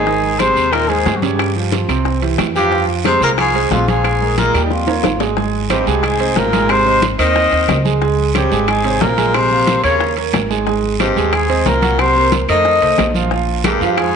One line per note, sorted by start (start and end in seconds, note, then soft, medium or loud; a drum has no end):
0.00 0.50 G#1 medium
0.00 0.40 G#2 medium
0.00 0.41 G#4 loud
0.06 0.34 D#3 medium
0.06 0.34 D#4 medium
0.06 0.34 D#5 medium
0.06 high bongo medium
0.06 high conga soft
0.06 long guiro medium
0.23 high conga soft
0.39 0.73 C3 medium
0.39 0.67 G#3 medium
0.39 0.67 G#4 medium
0.39 0.74 C5 medium
0.39 0.67 C5 medium
0.39 high bongo medium
0.39 high conga medium
0.39 high timbale medium
0.39 low timbale medium
0.39 short guiro medium
0.39 claves medium
0.56 1.02 D#2 medium
0.56 high bongo soft
0.56 short guiro medium
0.71 0.90 A#2 medium
0.71 0.86 D#3 medium
0.71 0.86 D#4 medium
0.71 0.90 A#4 medium
0.71 0.86 D#5 medium
0.71 high bongo medium
0.71 high conga soft
0.71 high timbale medium
0.71 long guiro medium
0.71 claves medium
0.88 1.16 G#2 medium
0.88 1.17 G#3 medium
0.88 1.18 G#4 medium
0.88 1.17 G#4 medium
0.88 1.17 C5 medium
0.88 high bongo soft
0.88 high conga soft
0.88 high timbale medium
1.06 1.83 G2 medium
1.06 high bongo medium
1.06 low bongo medium
1.06 high conga medium
1.06 low timbale medium
1.06 short guiro medium
1.15 1.23 F#2 soft
1.15 1.24 F#4 medium
1.21 1.55 G2 medium
1.21 1.50 C#3 medium
1.21 1.50 C#4 medium
1.21 1.56 G4 medium
1.21 1.50 C#5 medium
1.21 high bongo soft
1.21 high conga medium
1.21 high timbale medium
1.21 short guiro medium
1.39 high bongo medium
1.39 high conga soft
1.39 high timbale medium
1.39 long guiro medium
1.39 claves medium
1.56 1.69 F3 medium
1.56 1.70 F4 medium
1.56 1.70 G4 medium
1.56 high conga soft
1.72 1.86 F3 medium
1.72 1.86 F4 medium
1.72 1.86 G4 medium
1.72 high bongo medium
1.72 high conga medium
1.72 high timbale medium
1.72 low timbale medium
1.72 short guiro medium
1.88 2.35 C2 medium
1.88 2.16 C3 medium
1.88 2.16 C4 medium
1.88 2.16 C5 medium
1.88 high bongo soft
1.88 high timbale medium
1.88 short guiro medium
1.88 claves medium
2.05 high bongo medium
2.05 high conga soft
2.05 long guiro medium
2.22 2.49 E3 medium
2.22 2.50 E4 medium
2.22 2.50 G4 medium
2.22 high bongo soft
2.22 high conga soft
2.22 high timbale medium
2.38 3.15 F2 medium
2.38 high bongo medium
2.38 low bongo medium
2.38 high conga medium
2.38 high timbale medium
2.38 low timbale medium
2.38 short guiro medium
2.38 claves medium
2.55 2.86 G2 medium
2.55 2.69 F3 medium
2.55 2.69 F4 medium
2.55 2.87 G4 loud
2.55 2.69 F5 medium
2.55 high bongo soft
2.55 short guiro medium
2.71 2.99 F3 medium
2.71 2.99 F4 medium
2.71 2.99 F5 medium
2.71 high bongo medium
2.71 high conga soft
2.71 long guiro medium
2.88 high conga soft
3.05 3.21 C3 medium
3.05 3.32 G#3 medium
3.05 3.32 G#4 medium
3.05 3.32 C5 medium
3.05 3.21 C5 medium
3.05 high bongo medium
3.05 high conga medium
3.05 high timbale medium
3.05 low timbale medium
3.05 short guiro medium
3.05 claves medium
3.21 3.67 C2 medium
3.21 3.30 A#2 medium
3.21 3.31 A#4 loud
3.21 high bongo soft
3.21 short guiro medium
3.38 3.69 G#2 medium
3.38 3.52 F3 medium
3.38 3.52 F4 medium
3.38 3.70 G#4 loud
3.38 3.52 F5 medium
3.38 high bongo medium
3.38 high conga soft
3.38 high timbale medium
3.38 long guiro medium
3.38 claves medium
3.55 3.82 G#3 medium
3.55 3.82 G#4 medium
3.55 3.82 C5 medium
3.55 high bongo soft
3.55 high conga soft
3.55 high timbale medium
3.71 4.48 A#1 medium
3.71 3.89 F2 medium
3.71 3.90 F4 medium
3.71 high bongo medium
3.71 low bongo medium
3.71 high conga medium
3.71 low timbale medium
3.71 short guiro medium
3.88 4.37 G#2 medium
3.88 4.15 F3 medium
3.88 4.15 F4 medium
3.88 4.38 G#4 loud
3.88 4.15 F5 medium
3.88 high bongo soft
3.88 high conga medium
3.88 high timbale medium
3.88 short guiro medium
4.04 high bongo medium
4.04 high conga soft
4.04 high timbale medium
4.04 long guiro medium
4.04 claves medium
4.21 4.35 G#3 medium
4.21 4.35 G#4 medium
4.21 4.35 A#4 medium
4.21 high conga soft
4.38 4.62 A#2 medium
4.38 4.51 G#3 medium
4.38 4.51 G#4 medium
4.38 4.51 A#4 medium
4.38 4.62 A#4 medium
4.38 high bongo medium
4.38 high conga medium
4.38 high timbale medium
4.38 low timbale medium
4.38 short guiro medium
4.54 5.00 D#2 medium
4.54 4.81 G3 medium
4.54 4.81 G4 medium
4.54 4.82 G5 medium
4.54 high bongo soft
4.54 high timbale medium
4.54 short guiro medium
4.54 claves medium
4.64 4.72 D#2 soft
4.64 4.73 D#4 soft
4.71 5.20 F2 medium
4.71 5.21 F4 medium
4.71 high bongo medium
4.71 high conga soft
4.71 long guiro medium
4.87 5.14 A#3 medium
4.87 5.15 A#4 medium
4.87 5.15 C#5 medium
4.87 high bongo medium
4.87 high conga soft
4.87 high timbale medium
5.03 5.81 G#1 medium
5.03 low bongo loud
5.03 high conga medium
5.03 high timbale medium
5.03 short guiro medium
5.03 claves medium
5.20 5.34 G#3 medium
5.20 5.34 G#4 medium
5.20 5.34 G#5 medium
5.20 low bongo medium
5.20 low timbale medium
5.20 short guiro medium
5.37 5.64 G#3 medium
5.37 5.64 G#4 medium
5.37 5.64 G#5 medium
5.37 high bongo medium
5.37 high conga soft
5.37 long guiro medium
5.54 high conga soft
5.70 6.06 G2 medium
5.70 5.84 C4 medium
5.70 6.06 G4 medium
5.70 5.84 C5 medium
5.70 5.84 D#5 medium
5.70 high bongo medium
5.70 high conga medium
5.70 high timbale medium
5.70 low timbale medium
5.70 short guiro medium
5.70 claves medium
5.86 6.33 C2 medium
5.86 6.14 G#3 medium
5.86 6.14 G#4 medium
5.86 6.14 G#5 medium
5.86 high bongo soft
5.86 short guiro medium
6.03 6.37 G#2 medium
6.03 6.39 G#4 medium
6.03 high bongo medium
6.03 high conga soft
6.03 high timbale medium
6.03 long guiro medium
6.03 claves medium
6.20 6.47 C4 medium
6.20 6.47 C5 medium
6.20 6.47 D#5 medium
6.20 high bongo soft
6.20 high conga soft
6.20 high timbale medium
6.36 7.13 G#1 medium
6.36 6.71 A#2 medium
6.36 6.72 A#4 loud
6.36 high bongo medium
6.36 low bongo medium
6.36 high conga medium
6.36 low timbale medium
6.36 short guiro medium
6.53 6.80 G#3 medium
6.53 6.80 G#4 medium
6.53 6.80 G#5 medium
6.53 high bongo soft
6.53 high conga medium
6.53 high timbale medium
6.53 short guiro medium
6.69 7.02 C3 medium
6.69 7.03 C5 loud
6.69 high bongo medium
6.69 high conga soft
6.69 high timbale medium
6.69 long guiro medium
6.69 claves medium
6.86 7.13 C4 medium
6.86 7.13 C5 medium
6.86 7.13 D#5 medium
6.86 high conga soft
7.02 high bongo medium
7.02 high conga medium
7.02 high timbale medium
7.02 low timbale medium
7.02 short guiro medium
7.19 7.50 D#2 medium
7.19 7.81 D#3 medium
7.19 7.46 C4 medium
7.19 7.46 C5 medium
7.19 7.47 D#5 medium
7.19 7.82 D#5 loud
7.19 high bongo soft
7.19 high timbale medium
7.19 short guiro medium
7.19 claves medium
7.36 high bongo medium
7.36 high conga soft
7.36 long guiro medium
7.52 7.67 D#2 medium
7.52 7.79 C4 medium
7.52 7.79 C5 medium
7.52 7.80 D#5 medium
7.52 high bongo soft
7.52 high conga soft
7.52 high timbale medium
7.68 8.46 C#2 medium
7.68 high bongo medium
7.68 low bongo medium
7.68 high conga medium
7.68 high timbale medium
7.68 low timbale medium
7.68 short guiro medium
7.68 claves medium
7.85 7.99 G#3 medium
7.85 7.99 G#4 medium
7.85 7.99 G#5 medium
7.85 high bongo soft
7.85 high conga medium
7.85 short guiro medium
8.01 8.29 G#3 medium
8.01 8.29 G#4 medium
8.01 8.29 G#5 medium
8.01 high bongo medium
8.01 high conga soft
8.01 long guiro medium
8.19 high conga soft
8.35 8.71 G2 medium
8.35 8.49 C4 medium
8.35 8.71 G4 medium
8.35 8.49 C5 medium
8.35 8.49 C#5 medium
8.35 high bongo medium
8.35 high conga loud
8.35 high timbale medium
8.35 low timbale medium
8.35 short guiro medium
8.35 claves medium
8.51 8.98 G#1 medium
8.51 8.79 G#3 medium
8.51 8.79 G#4 medium
8.51 8.79 G#5 medium
8.51 high bongo soft
8.51 short guiro medium
8.68 9.03 G#2 medium
8.68 9.03 G#4 medium
8.68 high bongo medium
8.68 high conga soft
8.68 high timbale medium
8.68 long guiro medium
8.68 claves medium
8.84 9.12 C3 medium
8.84 9.12 C5 medium
8.84 9.12 C#5 medium
8.84 high bongo soft
8.84 high conga soft
8.84 high timbale medium
9.01 9.78 A#1 medium
9.01 9.36 A#2 medium
9.01 9.36 A#4 medium
9.01 high bongo medium
9.01 low bongo medium
9.01 high conga medium
9.01 low timbale medium
9.01 short guiro medium
9.18 9.45 G#3 medium
9.18 9.45 G#4 medium
9.18 9.45 G#5 medium
9.18 high bongo soft
9.18 high conga medium
9.18 high timbale medium
9.18 short guiro medium
9.34 9.84 C3 medium
9.34 9.84 C5 loud
9.34 high bongo medium
9.34 high conga soft
9.34 high timbale medium
9.34 long guiro medium
9.34 claves medium
9.51 9.78 A#3 medium
9.51 9.79 A#4 medium
9.51 9.79 F5 medium
9.51 high conga soft
9.67 high bongo medium
9.67 high conga medium
9.67 high timbale medium
9.67 low timbale medium
9.67 short guiro medium
9.84 10.30 D#2 medium
9.84 10.15 C#3 medium
9.84 10.11 A#3 medium
9.84 10.11 A#4 medium
9.84 10.15 C#5 medium
9.84 10.12 C#5 medium
9.84 high bongo soft
9.84 high timbale medium
9.84 short guiro medium
9.84 claves medium
10.00 high bongo medium
10.00 high conga soft
10.00 long guiro medium
10.17 10.45 A#3 medium
10.17 10.45 A#4 medium
10.17 10.45 C#5 medium
10.17 high bongo soft
10.17 high conga soft
10.17 high timbale medium
10.33 11.11 G#1 medium
10.33 high bongo medium
10.33 low bongo medium
10.33 high conga medium
10.33 high timbale medium
10.33 low timbale medium
10.33 short guiro medium
10.33 claves medium
10.50 10.64 G#3 medium
10.50 10.64 G#4 medium
10.50 10.64 G#5 medium
10.50 high bongo soft
10.50 short guiro medium
10.67 10.94 G#3 medium
10.67 10.94 G#4 medium
10.67 10.94 G#5 medium
10.67 high bongo medium
10.67 high conga soft
10.67 long guiro medium
10.84 high conga soft
11.00 11.35 G2 medium
11.00 11.14 C4 medium
11.00 11.35 G4 medium
11.00 11.14 C5 medium
11.00 11.14 D#5 medium
11.00 high bongo medium
11.00 high conga medium
11.00 high timbale medium
11.00 low timbale medium
11.00 short guiro medium
11.00 claves medium
11.16 11.63 D#2 medium
11.16 11.44 G#3 medium
11.16 11.44 G#4 medium
11.16 11.44 G#5 medium
11.16 high bongo soft
11.16 short guiro medium
11.33 11.66 G#2 medium
11.33 11.67 G#4 loud
11.33 high bongo medium
11.33 high conga soft
11.33 high timbale medium
11.33 long guiro medium
11.33 claves medium
11.49 11.77 C4 medium
11.49 11.77 C5 medium
11.49 11.77 D#5 medium
11.49 high bongo soft
11.49 high conga soft
11.49 high timbale medium
11.66 12.43 C2 medium
11.66 12.01 A#2 medium
11.66 12.02 A#4 medium
11.66 high bongo medium
11.66 low bongo medium
11.66 high conga medium
11.66 low timbale medium
11.66 short guiro medium
11.82 12.10 F#3 medium
11.82 12.10 F#4 medium
11.82 12.10 F#5 medium
11.82 high bongo soft
11.82 high conga medium
11.82 high timbale medium
11.82 short guiro medium
11.99 12.33 C3 medium
11.99 12.33 C5 loud
11.99 high bongo medium
11.99 high conga soft
11.99 high timbale medium
11.99 long guiro medium
11.99 claves medium
12.15 12.43 A#3 medium
12.15 12.43 A#4 medium
12.15 12.43 C5 medium
12.15 high conga soft
12.32 high bongo medium
12.32 high conga loud
12.32 high timbale medium
12.32 low timbale medium
12.32 short guiro medium
12.48 12.79 F2 loud
12.48 13.11 D#3 medium
12.48 12.76 A3 medium
12.48 12.76 A4 medium
12.48 12.76 C5 medium
12.48 13.12 D#5 loud
12.48 high bongo soft
12.48 high timbale medium
12.48 short guiro medium
12.48 claves medium
12.65 high bongo medium
12.65 high conga soft
12.65 long guiro medium
12.81 12.97 C2 medium
12.81 13.09 A3 medium
12.81 13.09 A4 medium
12.81 13.09 C5 medium
12.81 high bongo soft
12.81 high conga soft
12.81 high timbale medium
12.98 13.75 A#1 medium
12.98 high bongo medium
12.98 low bongo medium
12.98 high conga medium
12.98 high timbale medium
12.98 low timbale medium
12.98 short guiro medium
12.98 claves medium
13.15 13.29 F3 medium
13.15 13.29 F4 medium
13.15 13.29 F5 medium
13.15 high bongo soft
13.15 high conga medium
13.15 short guiro medium
13.31 13.59 F3 medium
13.31 13.59 F4 medium
13.31 13.59 F5 medium
13.31 high bongo medium
13.31 high conga soft
13.31 long guiro medium
13.48 high conga soft
13.64 13.99 G2 medium
13.64 13.78 G#3 medium
13.64 13.99 G4 medium
13.64 13.79 G#4 medium
13.64 13.79 A#4 medium
13.64 high bongo medium
13.64 high conga medium
13.64 high timbale medium
13.64 low timbale medium
13.64 short guiro medium
13.64 claves medium
13.81 14.16 F2 medium
13.81 14.09 F3 medium
13.81 14.09 F4 medium
13.81 14.09 F5 medium
13.81 high bongo soft
13.81 short guiro medium
13.97 14.16 G#2 medium
13.97 14.16 G#4 medium
13.97 high bongo medium
13.97 high conga soft
13.97 high timbale medium
13.97 long guiro medium
13.97 claves medium